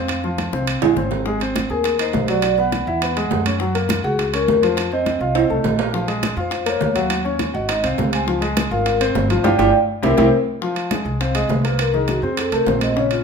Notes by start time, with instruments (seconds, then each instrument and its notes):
Already playing: upright bass F2, grand piano C4 C5, vibraphone F5
0.08 high bongo, high conga, high timbale
0.24 grand piano F3 F4, high bongo, high conga
0.38 high bongo, high conga, high timbale, low timbale
0.53 upright bass C2, grand piano C4 C5, high bongo, high conga
0.67 high conga, high timbale
0.82 upright bass A#1, grand piano G#3 G#4, low bongo, high conga, high timbale
0.97 upright bass G#1, grand piano C4 C5, low bongo, high conga
1.11 low bongo, low timbale
1.26 grand piano G#3 G#4, high bongo, high conga
1.40 grand piano C4 C5, high bongo, high conga, high timbale
1.56 high bongo, high conga, high timbale, low timbale
1.70 upright bass D#2, grand piano G#4 G#5, vibraphone A#4, high bongo, high conga
1.84 high bongo, high conga, high timbale
1.99 grand piano D#4 D#5, vibraphone C5, high bongo, high conga, high timbale
2.13 upright bass B1, high bongo, low bongo, high conga, low timbale
2.28 grand piano F#3 F#4, vibraphone D5, high timbale
2.42 high bongo, high conga, high timbale
2.58 grand piano B3 B4, vibraphone F#5, high bongo, high conga
2.72 high bongo, high conga, high timbale, low timbale
2.87 upright bass E2, grand piano E4 E5, high bongo, high conga
3.02 grand piano B3 B4, high bongo, high conga, high timbale
3.16 grand piano G#3 G#4, high bongo, high conga, high timbale
3.31 upright bass F#2, high bongo, low bongo, high conga, low timbale
3.46 grand piano C#4 C#5, high conga, high timbale
3.60 grand piano F#3 F#4, high bongo, high conga
3.75 grand piano A#3 A#4, high bongo, high conga, high timbale
3.89 high bongo, high conga, high timbale, low timbale
4.04 upright bass C#2, grand piano F#4 F#5, vibraphone G#4, high bongo, high conga
4.19 high bongo, high conga, high timbale
4.33 grand piano C#4 C#5, vibraphone A#4, high bongo, high conga, high timbale
4.48 upright bass F2, high bongo, low bongo, high conga, low timbale
4.62 grand piano F3 F4, vibraphone C5, high timbale
4.77 high bongo, high conga, high timbale
4.92 grand piano C4 C5, vibraphone D#5, high bongo, high conga
5.06 high bongo, high conga, high timbale, low timbale
5.20 upright bass C2, grand piano F4 F5, high bongo, high conga
5.35 grand piano C4 C5, high bongo, high conga, high timbale
5.50 upright bass C2, grand piano A3 A4, high bongo, high conga
5.64 upright bass A#1, high bongo, low bongo, high conga, low timbale
5.79 grand piano A#3 A#4, low timbale
5.93 grand piano F3 F4, high bongo, high conga
6.08 grand piano G#3 G#4, high bongo, high conga, high timbale
6.23 high bongo, high conga, high timbale, low timbale
6.36 upright bass F2, grand piano F4 F5, vibraphone C5, high bongo, high conga
6.51 high bongo, high conga, high timbale
6.66 grand piano A#3 A#4, vibraphone C#5, high bongo, high conga, high timbale
6.81 upright bass D#2, high bongo, low bongo, high conga, low timbale
6.95 grand piano F#3 F#4, vibraphone F5, high conga, high timbale
7.10 high bongo, high conga, high timbale
7.25 grand piano C#4 C#5, high bongo, high conga
7.39 high bongo, high conga, high timbale, low timbale
7.54 upright bass G#1, grand piano F#4 F#5, vibraphone D#5, high bongo, high conga
7.68 grand piano D#4 D#5, high bongo, high conga, high timbale
7.83 upright bass C2, grand piano C4 C5, vibraphone F5, high bongo, high conga, high timbale
7.98 upright bass C#2, high bongo, low bongo, high conga, low timbale
8.13 grand piano C4 C5, vibraphone G#5, high timbale
8.27 grand piano F3 F4, high bongo, high conga
8.41 grand piano G#3 G#4, high bongo, high conga, high timbale
8.57 high bongo, high conga, high timbale, low timbale
8.71 upright bass G#1, grand piano F4 F5, vibraphone A#4, high bongo, high conga
8.86 high bongo, high conga, high timbale
9.00 grand piano C4 C5, vibraphone C5, high bongo, high conga, high timbale
9.15 upright bass G1, high bongo, low bongo, high conga, low timbale
9.30 grand piano F3 F4, high timbale
9.44 upright bass G1, grand piano D4 F4 G4, vibraphone D5 F5 G5, high bongo, high conga, high timbale
9.59 upright bass G1, grand piano D4 F4 G4, vibraphone D5 F5 G5, high bongo, high conga, high timbale
10.02 upright bass C2, grand piano C4 E4 G4, vibraphone A#4 C5 E5, high bongo, high conga, high timbale
10.17 upright bass C2, grand piano C4 E4 G4, vibraphone A#4 C5 E5, high bongo, high conga, high timbale
10.61 grand piano F3 F4, high bongo, high conga
10.76 high bongo, high conga, high timbale
10.91 grand piano G#3 G#4, high bongo, high conga, high timbale, low timbale
11.05 upright bass C2, high bongo, high conga
11.20 grand piano C4 C5, vibraphone F5, high bongo, high conga, high timbale
11.35 grand piano G#3 G#4, vibraphone D#5, high bongo, high conga, high timbale
11.49 upright bass C2, vibraphone C5, high bongo, low bongo, high conga, low timbale
11.64 grand piano A#3 A#4, vibraphone B4, high timbale
11.79 vibraphone A#4, high bongo, high conga, high timbale
11.94 grand piano D#3 D#4, vibraphone G#4, high bongo, high conga
12.08 vibraphone F#4, high bongo, high conga, high timbale, low timbale
12.22 upright bass F2, grand piano C4 C5, vibraphone G#4, high bongo, high conga
12.37 vibraphone A4, high bongo, high conga, high timbale
12.51 upright bass C2, grand piano A3 A4, vibraphone A#4, high bongo, high conga, high timbale
12.66 upright bass A#1, grand piano C4 C5, vibraphone C5, high bongo, low bongo, high conga, low timbale
12.81 vibraphone D#5, high conga, high timbale
12.96 grand piano C#3 C#4, vibraphone C#5, high bongo, high conga
13.11 vibraphone F4, high bongo, high conga, high timbale